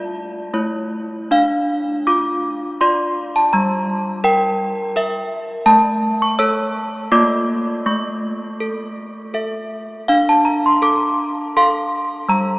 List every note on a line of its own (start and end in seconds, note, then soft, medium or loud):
0.00 0.50 F4 soft
0.00 0.49 D5 medium
0.00 0.88 A5 medium
0.54 1.28 A3 medium
0.54 1.26 E4 soft
0.54 1.26 C#5 soft
1.31 3.49 D4 medium
1.31 2.04 F5 medium
2.07 2.80 F4 medium
2.07 2.78 D6 loud
2.81 3.49 F4 soft
2.81 3.49 D5 medium
2.81 3.33 C6 loud
3.36 3.53 A5 medium
3.53 5.64 G3 medium
3.53 4.22 A#5 medium
4.24 4.95 A#4 medium
4.24 5.63 G5 loud
4.96 5.63 A#4 medium
4.96 5.64 E5 medium
5.66 7.06 A3 medium
5.66 6.18 A5 loud
6.22 6.39 C#6 loud
6.39 7.08 A4 medium
6.39 7.07 C#5 medium
6.39 7.08 E6 loud
7.12 7.83 A#3 medium
7.12 7.81 F4 medium
7.12 7.82 D5 medium
7.12 7.82 D6 loud
7.86 10.05 A3 medium
7.86 9.31 C#6 medium
8.60 9.33 A4 medium
9.34 10.04 A4 soft
9.34 10.05 E5 medium
10.08 12.25 D4 medium
10.08 10.27 F5 medium
10.29 10.47 A5 medium
10.45 10.64 A#5 medium
10.66 10.84 C6 medium
10.82 11.55 A4 medium
10.82 11.53 D6 loud
11.57 12.25 A4 medium
11.57 12.25 F5 medium
11.57 12.26 C6 loud
12.29 12.59 G3 medium
12.29 12.59 A#5 loud